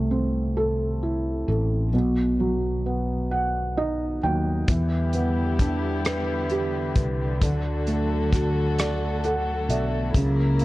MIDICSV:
0, 0, Header, 1, 5, 480
1, 0, Start_track
1, 0, Tempo, 911854
1, 1021, Time_signature, 6, 3, 24, 8
1, 5605, End_track
2, 0, Start_track
2, 0, Title_t, "Felt piano"
2, 0, Program_c, 0, 0
2, 0, Control_c, 0, 64, 127
2, 0, Note_on_c, 0, 48, 49
2, 0, Note_on_c, 0, 57, 47
2, 58, Note_on_c, 0, 60, 48
2, 300, Note_on_c, 0, 69, 52
2, 542, Note_on_c, 0, 64, 45
2, 759, Note_off_c, 0, 57, 0
2, 774, Note_off_c, 0, 69, 0
2, 782, Note_on_c, 0, 69, 41
2, 999, Note_off_c, 0, 60, 0
2, 1003, Note_off_c, 0, 48, 0
2, 1007, Note_off_c, 0, 64, 0
2, 1014, Note_off_c, 0, 69, 0
2, 1021, Note_on_c, 0, 47, 56
2, 1027, Control_c, 0, 64, 0
2, 1125, Control_c, 0, 64, 127
2, 1263, Note_on_c, 0, 54, 49
2, 1506, Note_on_c, 0, 59, 42
2, 1745, Note_on_c, 0, 78, 50
2, 1988, Note_on_c, 0, 63, 45
2, 1988, Note_on_c, 0, 75, 57
2, 2202, Note_off_c, 0, 54, 0
2, 2208, Note_off_c, 0, 75, 0
2, 2227, Note_on_c, 0, 54, 38
2, 2228, Note_on_c, 0, 79, 49
2, 2441, Note_off_c, 0, 47, 0
2, 2443, Note_off_c, 0, 59, 0
2, 2443, Note_off_c, 0, 78, 0
2, 2449, Note_off_c, 0, 79, 0
2, 2451, Note_off_c, 0, 63, 0
2, 2457, Note_off_c, 0, 54, 0
2, 2469, Note_on_c, 0, 52, 56
2, 2470, Control_c, 0, 64, 0
2, 2560, Control_c, 0, 64, 127
2, 2708, Note_on_c, 0, 59, 44
2, 2951, Note_on_c, 0, 62, 47
2, 3191, Note_on_c, 0, 71, 53
2, 3428, Note_on_c, 0, 67, 46
2, 3645, Note_off_c, 0, 59, 0
2, 3656, Note_off_c, 0, 71, 0
2, 3664, Note_on_c, 0, 71, 44
2, 3885, Note_off_c, 0, 52, 0
2, 3886, Note_off_c, 0, 62, 0
2, 3891, Note_off_c, 0, 67, 0
2, 3897, Note_off_c, 0, 71, 0
2, 3908, Note_on_c, 0, 50, 54
2, 3910, Control_c, 0, 64, 0
2, 3993, Control_c, 0, 64, 127
2, 4143, Note_on_c, 0, 57, 41
2, 4389, Note_on_c, 0, 66, 49
2, 4627, Note_on_c, 0, 74, 49
2, 4866, Note_on_c, 0, 69, 47
2, 4866, Note_on_c, 0, 78, 57
2, 5082, Note_off_c, 0, 57, 0
2, 5088, Note_off_c, 0, 78, 0
2, 5098, Note_off_c, 0, 74, 0
2, 5106, Note_on_c, 0, 74, 38
2, 5106, Note_on_c, 0, 76, 48
2, 5324, Note_off_c, 0, 50, 0
2, 5325, Note_off_c, 0, 66, 0
2, 5327, Note_off_c, 0, 76, 0
2, 5330, Note_off_c, 0, 69, 0
2, 5337, Note_off_c, 0, 74, 0
2, 5347, Note_on_c, 0, 49, 62
2, 5349, Control_c, 0, 64, 0
2, 5458, Control_c, 0, 64, 127
2, 5585, Note_on_c, 0, 58, 51
2, 5605, Note_off_c, 0, 49, 0
2, 5605, Note_off_c, 0, 58, 0
2, 5605, End_track
3, 0, Start_track
3, 0, Title_t, "String section"
3, 0, Program_c, 1, 48
3, 2461, Note_on_c, 1, 59, 52
3, 2463, Note_on_c, 1, 55, 59
3, 2464, Note_on_c, 1, 64, 58
3, 2464, Note_on_c, 1, 67, 69
3, 2465, Note_on_c, 1, 50, 65
3, 3888, Note_off_c, 1, 59, 0
3, 3889, Note_off_c, 1, 55, 0
3, 3889, Note_off_c, 1, 64, 0
3, 3889, Note_off_c, 1, 67, 0
3, 3902, Note_on_c, 1, 66, 56
3, 3904, Note_on_c, 1, 54, 52
3, 3905, Note_on_c, 1, 57, 59
3, 3905, Note_on_c, 1, 69, 68
3, 5323, Note_off_c, 1, 50, 0
3, 5328, Note_off_c, 1, 66, 0
3, 5329, Note_off_c, 1, 69, 0
3, 5330, Note_off_c, 1, 57, 0
3, 5338, Note_on_c, 1, 64, 58
3, 5338, Note_on_c, 1, 70, 74
3, 5340, Note_on_c, 1, 58, 57
3, 5341, Note_on_c, 1, 49, 64
3, 5605, Note_off_c, 1, 49, 0
3, 5605, Note_off_c, 1, 54, 0
3, 5605, Note_off_c, 1, 58, 0
3, 5605, Note_off_c, 1, 64, 0
3, 5605, Note_off_c, 1, 70, 0
3, 5605, End_track
4, 0, Start_track
4, 0, Title_t, "Fretless electric bass"
4, 0, Program_c, 2, 35
4, 0, Note_on_c, 2, 36, 82
4, 762, Note_off_c, 2, 36, 0
4, 781, Note_on_c, 2, 33, 72
4, 1019, Note_off_c, 2, 33, 0
4, 1019, Note_on_c, 2, 35, 87
4, 2200, Note_off_c, 2, 35, 0
4, 2227, Note_on_c, 2, 39, 73
4, 2451, Note_off_c, 2, 39, 0
4, 2461, Note_on_c, 2, 40, 81
4, 3642, Note_off_c, 2, 40, 0
4, 3662, Note_on_c, 2, 36, 81
4, 3888, Note_off_c, 2, 36, 0
4, 3902, Note_on_c, 2, 38, 81
4, 5081, Note_off_c, 2, 38, 0
4, 5099, Note_on_c, 2, 35, 78
4, 5326, Note_off_c, 2, 35, 0
4, 5342, Note_on_c, 2, 37, 86
4, 5605, Note_off_c, 2, 37, 0
4, 5605, End_track
5, 0, Start_track
5, 0, Title_t, "Drums"
5, 2462, Note_on_c, 9, 42, 65
5, 2464, Note_on_c, 9, 36, 84
5, 2515, Note_off_c, 9, 42, 0
5, 2516, Note_off_c, 9, 36, 0
5, 2700, Note_on_c, 9, 42, 42
5, 2752, Note_off_c, 9, 42, 0
5, 2943, Note_on_c, 9, 36, 72
5, 2944, Note_on_c, 9, 42, 57
5, 2996, Note_off_c, 9, 36, 0
5, 2996, Note_off_c, 9, 42, 0
5, 3184, Note_on_c, 9, 42, 76
5, 3190, Note_on_c, 9, 37, 89
5, 3236, Note_off_c, 9, 42, 0
5, 3243, Note_off_c, 9, 37, 0
5, 3419, Note_on_c, 9, 42, 40
5, 3472, Note_off_c, 9, 42, 0
5, 3661, Note_on_c, 9, 42, 58
5, 3662, Note_on_c, 9, 36, 76
5, 3714, Note_off_c, 9, 42, 0
5, 3715, Note_off_c, 9, 36, 0
5, 3902, Note_on_c, 9, 42, 67
5, 3903, Note_on_c, 9, 36, 75
5, 3955, Note_off_c, 9, 42, 0
5, 3956, Note_off_c, 9, 36, 0
5, 4141, Note_on_c, 9, 42, 43
5, 4194, Note_off_c, 9, 42, 0
5, 4383, Note_on_c, 9, 36, 69
5, 4386, Note_on_c, 9, 42, 61
5, 4393, Note_on_c, 9, 37, 26
5, 4435, Note_off_c, 9, 36, 0
5, 4439, Note_off_c, 9, 42, 0
5, 4446, Note_off_c, 9, 37, 0
5, 4624, Note_on_c, 9, 42, 72
5, 4630, Note_on_c, 9, 37, 84
5, 4676, Note_off_c, 9, 42, 0
5, 4683, Note_off_c, 9, 37, 0
5, 4862, Note_on_c, 9, 42, 40
5, 4914, Note_off_c, 9, 42, 0
5, 5104, Note_on_c, 9, 42, 62
5, 5157, Note_off_c, 9, 42, 0
5, 5341, Note_on_c, 9, 36, 76
5, 5343, Note_on_c, 9, 42, 75
5, 5394, Note_off_c, 9, 36, 0
5, 5396, Note_off_c, 9, 42, 0
5, 5577, Note_on_c, 9, 42, 40
5, 5605, Note_off_c, 9, 42, 0
5, 5605, End_track
0, 0, End_of_file